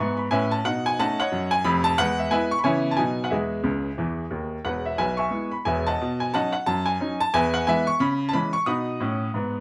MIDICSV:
0, 0, Header, 1, 2, 480
1, 0, Start_track
1, 0, Key_signature, 4, "major"
1, 0, Tempo, 333890
1, 929, Time_signature, 4, 2, 24, 8
1, 13804, End_track
2, 0, Start_track
2, 0, Title_t, "Upright piano"
2, 0, Program_c, 0, 0
2, 0, Note_on_c, 0, 44, 65
2, 0, Note_on_c, 0, 76, 55
2, 0, Note_on_c, 0, 80, 69
2, 0, Note_on_c, 0, 85, 82
2, 5, Note_on_c, 0, 59, 72
2, 241, Note_off_c, 0, 76, 0
2, 242, Note_off_c, 0, 80, 0
2, 244, Note_on_c, 0, 83, 67
2, 266, Note_off_c, 0, 85, 0
2, 362, Note_off_c, 0, 44, 0
2, 374, Note_off_c, 0, 59, 0
2, 441, Note_off_c, 0, 83, 0
2, 443, Note_on_c, 0, 80, 92
2, 446, Note_on_c, 0, 45, 73
2, 460, Note_on_c, 0, 71, 72
2, 460, Note_on_c, 0, 76, 71
2, 465, Note_on_c, 0, 61, 72
2, 723, Note_off_c, 0, 71, 0
2, 723, Note_off_c, 0, 76, 0
2, 734, Note_off_c, 0, 80, 0
2, 739, Note_on_c, 0, 81, 91
2, 831, Note_off_c, 0, 45, 0
2, 842, Note_off_c, 0, 61, 0
2, 928, Note_on_c, 0, 47, 69
2, 929, Note_off_c, 0, 81, 0
2, 935, Note_on_c, 0, 78, 92
2, 958, Note_on_c, 0, 63, 57
2, 1174, Control_c, 0, 64, 127
2, 1214, Note_off_c, 0, 63, 0
2, 1221, Note_off_c, 0, 78, 0
2, 1235, Note_on_c, 0, 80, 101
2, 1336, Note_off_c, 0, 47, 0
2, 1417, Note_off_c, 0, 80, 0
2, 1426, Note_on_c, 0, 57, 52
2, 1428, Control_c, 0, 64, 0
2, 1429, Note_on_c, 0, 81, 103
2, 1431, Note_on_c, 0, 61, 55
2, 1433, Note_on_c, 0, 75, 77
2, 1434, Note_on_c, 0, 78, 73
2, 1444, Note_on_c, 0, 63, 63
2, 1685, Note_off_c, 0, 57, 0
2, 1689, Note_off_c, 0, 61, 0
2, 1691, Note_off_c, 0, 75, 0
2, 1691, Note_off_c, 0, 78, 0
2, 1699, Note_off_c, 0, 63, 0
2, 1708, Note_off_c, 0, 81, 0
2, 1719, Note_on_c, 0, 78, 92
2, 1731, Note_on_c, 0, 75, 65
2, 1741, Note_on_c, 0, 73, 69
2, 1895, Note_on_c, 0, 42, 73
2, 2162, Note_off_c, 0, 75, 0
2, 2168, Note_off_c, 0, 73, 0
2, 2170, Note_on_c, 0, 80, 107
2, 2189, Note_off_c, 0, 78, 0
2, 2301, Note_off_c, 0, 42, 0
2, 2364, Note_on_c, 0, 83, 105
2, 2366, Note_off_c, 0, 80, 0
2, 2369, Note_on_c, 0, 29, 85
2, 2369, Note_on_c, 0, 41, 91
2, 2645, Note_on_c, 0, 81, 119
2, 2656, Note_off_c, 0, 83, 0
2, 2753, Note_off_c, 0, 41, 0
2, 2754, Note_off_c, 0, 29, 0
2, 2843, Note_off_c, 0, 81, 0
2, 2848, Note_on_c, 0, 78, 117
2, 2858, Note_on_c, 0, 40, 85
2, 2875, Note_on_c, 0, 71, 78
2, 2892, Note_on_c, 0, 56, 60
2, 3103, Control_c, 0, 64, 127
2, 3132, Note_off_c, 0, 71, 0
2, 3138, Note_off_c, 0, 78, 0
2, 3145, Note_off_c, 0, 56, 0
2, 3146, Note_on_c, 0, 76, 72
2, 3263, Note_off_c, 0, 40, 0
2, 3314, Note_off_c, 0, 76, 0
2, 3319, Note_on_c, 0, 80, 99
2, 3323, Note_on_c, 0, 59, 52
2, 3327, Note_on_c, 0, 56, 58
2, 3335, Note_on_c, 0, 71, 82
2, 3336, Note_on_c, 0, 76, 80
2, 3338, Note_on_c, 0, 64, 59
2, 3346, Control_c, 0, 64, 0
2, 3590, Note_off_c, 0, 59, 0
2, 3592, Note_off_c, 0, 56, 0
2, 3600, Note_off_c, 0, 64, 0
2, 3602, Note_off_c, 0, 71, 0
2, 3602, Note_off_c, 0, 76, 0
2, 3614, Note_off_c, 0, 80, 0
2, 3614, Note_on_c, 0, 85, 101
2, 3712, Note_off_c, 0, 85, 0
2, 3715, Note_on_c, 0, 83, 67
2, 3793, Note_on_c, 0, 80, 88
2, 3799, Note_on_c, 0, 49, 89
2, 3803, Note_on_c, 0, 73, 74
2, 3804, Note_on_c, 0, 59, 59
2, 3806, Note_on_c, 0, 52, 47
2, 3811, Note_off_c, 0, 83, 0
2, 3813, Note_on_c, 0, 76, 63
2, 3816, Note_on_c, 0, 64, 59
2, 4070, Note_off_c, 0, 59, 0
2, 4071, Note_off_c, 0, 52, 0
2, 4071, Control_c, 0, 64, 127
2, 4089, Note_off_c, 0, 64, 0
2, 4164, Note_off_c, 0, 73, 0
2, 4170, Note_off_c, 0, 76, 0
2, 4186, Note_off_c, 0, 80, 0
2, 4188, Note_on_c, 0, 81, 80
2, 4212, Note_off_c, 0, 49, 0
2, 4264, Note_on_c, 0, 80, 90
2, 4272, Note_on_c, 0, 54, 49
2, 4276, Note_on_c, 0, 47, 78
2, 4287, Note_off_c, 0, 81, 0
2, 4287, Note_on_c, 0, 59, 43
2, 4291, Note_on_c, 0, 63, 57
2, 4302, Control_c, 0, 64, 0
2, 4531, Control_c, 0, 64, 127
2, 4541, Note_off_c, 0, 54, 0
2, 4552, Note_off_c, 0, 59, 0
2, 4568, Note_off_c, 0, 63, 0
2, 4656, Note_on_c, 0, 78, 67
2, 4662, Note_off_c, 0, 80, 0
2, 4691, Note_off_c, 0, 47, 0
2, 4746, Note_on_c, 0, 76, 56
2, 4758, Note_on_c, 0, 40, 59
2, 4761, Note_off_c, 0, 78, 0
2, 4767, Note_on_c, 0, 71, 48
2, 4769, Note_on_c, 0, 68, 48
2, 4783, Note_on_c, 0, 56, 62
2, 4794, Control_c, 0, 64, 0
2, 5027, Control_c, 0, 64, 127
2, 5148, Note_off_c, 0, 40, 0
2, 5162, Note_off_c, 0, 56, 0
2, 5220, Note_on_c, 0, 49, 61
2, 5229, Note_on_c, 0, 37, 69
2, 5265, Control_c, 0, 64, 0
2, 5592, Note_off_c, 0, 49, 0
2, 5597, Note_off_c, 0, 37, 0
2, 5719, Note_on_c, 0, 52, 54
2, 5725, Note_on_c, 0, 40, 65
2, 6084, Note_off_c, 0, 52, 0
2, 6088, Note_off_c, 0, 40, 0
2, 6191, Note_on_c, 0, 39, 60
2, 6195, Note_on_c, 0, 51, 53
2, 6441, Note_off_c, 0, 71, 0
2, 6442, Note_off_c, 0, 68, 0
2, 6488, Note_off_c, 0, 76, 0
2, 6558, Note_off_c, 0, 39, 0
2, 6561, Note_off_c, 0, 51, 0
2, 6679, Note_on_c, 0, 78, 72
2, 6685, Note_on_c, 0, 28, 55
2, 6690, Note_on_c, 0, 40, 57
2, 6692, Note_on_c, 0, 71, 61
2, 6943, Control_c, 0, 64, 127
2, 6960, Note_off_c, 0, 71, 0
2, 6974, Note_off_c, 0, 78, 0
2, 6979, Note_on_c, 0, 76, 65
2, 7072, Note_off_c, 0, 28, 0
2, 7075, Note_off_c, 0, 40, 0
2, 7155, Note_off_c, 0, 76, 0
2, 7163, Note_on_c, 0, 80, 91
2, 7169, Note_on_c, 0, 35, 68
2, 7177, Note_on_c, 0, 76, 61
2, 7188, Control_c, 0, 64, 0
2, 7188, Note_on_c, 0, 71, 64
2, 7431, Note_off_c, 0, 76, 0
2, 7433, Note_on_c, 0, 85, 76
2, 7438, Note_off_c, 0, 80, 0
2, 7449, Note_off_c, 0, 71, 0
2, 7452, Note_on_c, 0, 76, 62
2, 7460, Note_on_c, 0, 80, 55
2, 7556, Note_off_c, 0, 35, 0
2, 7625, Note_on_c, 0, 56, 44
2, 7628, Note_on_c, 0, 59, 45
2, 7632, Note_on_c, 0, 64, 45
2, 7896, Note_off_c, 0, 56, 0
2, 7898, Note_off_c, 0, 59, 0
2, 7901, Note_off_c, 0, 64, 0
2, 7903, Note_off_c, 0, 76, 0
2, 7907, Note_off_c, 0, 80, 0
2, 7927, Note_off_c, 0, 85, 0
2, 7929, Note_on_c, 0, 83, 68
2, 8126, Note_off_c, 0, 83, 0
2, 8127, Note_on_c, 0, 80, 84
2, 8132, Note_on_c, 0, 40, 69
2, 8138, Note_on_c, 0, 28, 74
2, 8149, Note_on_c, 0, 76, 58
2, 8150, Note_on_c, 0, 71, 66
2, 8410, Note_off_c, 0, 71, 0
2, 8410, Note_off_c, 0, 76, 0
2, 8418, Note_off_c, 0, 80, 0
2, 8432, Note_on_c, 0, 81, 91
2, 8445, Note_on_c, 0, 75, 67
2, 8451, Note_on_c, 0, 78, 62
2, 8516, Note_off_c, 0, 40, 0
2, 8519, Note_off_c, 0, 28, 0
2, 8645, Note_on_c, 0, 47, 72
2, 8855, Control_c, 0, 64, 127
2, 8880, Note_off_c, 0, 75, 0
2, 8883, Note_off_c, 0, 78, 0
2, 8906, Note_off_c, 0, 81, 0
2, 8917, Note_on_c, 0, 80, 84
2, 9039, Note_off_c, 0, 47, 0
2, 9100, Note_off_c, 0, 80, 0
2, 9109, Note_on_c, 0, 81, 95
2, 9110, Note_on_c, 0, 54, 58
2, 9112, Control_c, 0, 64, 0
2, 9115, Note_on_c, 0, 61, 54
2, 9121, Note_on_c, 0, 63, 55
2, 9124, Note_on_c, 0, 78, 75
2, 9125, Note_on_c, 0, 75, 69
2, 9359, Note_off_c, 0, 78, 0
2, 9369, Note_off_c, 0, 54, 0
2, 9372, Note_off_c, 0, 61, 0
2, 9376, Note_off_c, 0, 63, 0
2, 9378, Note_off_c, 0, 75, 0
2, 9381, Note_on_c, 0, 78, 83
2, 9389, Note_off_c, 0, 81, 0
2, 9572, Note_off_c, 0, 78, 0
2, 9581, Note_on_c, 0, 81, 103
2, 9584, Note_on_c, 0, 42, 81
2, 9856, Note_on_c, 0, 80, 95
2, 9865, Note_off_c, 0, 81, 0
2, 9986, Note_off_c, 0, 42, 0
2, 10067, Note_on_c, 0, 54, 57
2, 10069, Note_on_c, 0, 61, 53
2, 10074, Note_on_c, 0, 63, 68
2, 10326, Note_off_c, 0, 54, 0
2, 10328, Note_off_c, 0, 61, 0
2, 10332, Note_off_c, 0, 63, 0
2, 10338, Note_off_c, 0, 80, 0
2, 10357, Note_on_c, 0, 81, 111
2, 10539, Note_off_c, 0, 81, 0
2, 10547, Note_on_c, 0, 40, 88
2, 10548, Note_on_c, 0, 80, 116
2, 10557, Note_on_c, 0, 76, 73
2, 10565, Note_on_c, 0, 71, 81
2, 10785, Control_c, 0, 64, 127
2, 10813, Note_off_c, 0, 76, 0
2, 10817, Note_off_c, 0, 71, 0
2, 10828, Note_off_c, 0, 80, 0
2, 10834, Note_on_c, 0, 78, 92
2, 10948, Note_off_c, 0, 40, 0
2, 11018, Note_off_c, 0, 78, 0
2, 11024, Control_c, 0, 64, 0
2, 11025, Note_on_c, 0, 80, 96
2, 11032, Note_on_c, 0, 52, 54
2, 11038, Note_on_c, 0, 56, 59
2, 11045, Note_on_c, 0, 59, 60
2, 11048, Note_on_c, 0, 71, 78
2, 11048, Note_on_c, 0, 76, 89
2, 11290, Note_off_c, 0, 52, 0
2, 11295, Note_off_c, 0, 56, 0
2, 11299, Note_off_c, 0, 59, 0
2, 11299, Note_off_c, 0, 71, 0
2, 11299, Note_off_c, 0, 76, 0
2, 11306, Note_off_c, 0, 80, 0
2, 11314, Note_on_c, 0, 85, 98
2, 11498, Note_off_c, 0, 85, 0
2, 11500, Note_on_c, 0, 49, 96
2, 11504, Note_on_c, 0, 83, 90
2, 11740, Control_c, 0, 64, 127
2, 11881, Note_off_c, 0, 83, 0
2, 11904, Note_off_c, 0, 49, 0
2, 11912, Note_on_c, 0, 81, 89
2, 11977, Note_on_c, 0, 52, 58
2, 11980, Note_on_c, 0, 83, 94
2, 11985, Note_on_c, 0, 56, 54
2, 11988, Control_c, 0, 64, 0
2, 11988, Note_on_c, 0, 61, 54
2, 11989, Note_off_c, 0, 81, 0
2, 12239, Note_off_c, 0, 52, 0
2, 12245, Note_off_c, 0, 56, 0
2, 12247, Note_off_c, 0, 61, 0
2, 12262, Note_on_c, 0, 85, 93
2, 12264, Note_off_c, 0, 83, 0
2, 12451, Note_off_c, 0, 85, 0
2, 12451, Note_on_c, 0, 47, 66
2, 12453, Note_on_c, 0, 87, 78
2, 12464, Note_on_c, 0, 78, 65
2, 12467, Note_on_c, 0, 83, 64
2, 12476, Note_on_c, 0, 63, 66
2, 12693, Control_c, 0, 64, 127
2, 12834, Note_off_c, 0, 47, 0
2, 12849, Note_off_c, 0, 63, 0
2, 12944, Note_on_c, 0, 45, 75
2, 12950, Control_c, 0, 64, 0
2, 12964, Note_on_c, 0, 61, 64
2, 13322, Note_off_c, 0, 45, 0
2, 13334, Note_off_c, 0, 61, 0
2, 13429, Note_on_c, 0, 44, 61
2, 13453, Note_on_c, 0, 59, 61
2, 13804, Note_off_c, 0, 44, 0
2, 13804, Note_off_c, 0, 59, 0
2, 13804, Note_off_c, 0, 78, 0
2, 13804, Note_off_c, 0, 83, 0
2, 13804, Note_off_c, 0, 87, 0
2, 13804, End_track
0, 0, End_of_file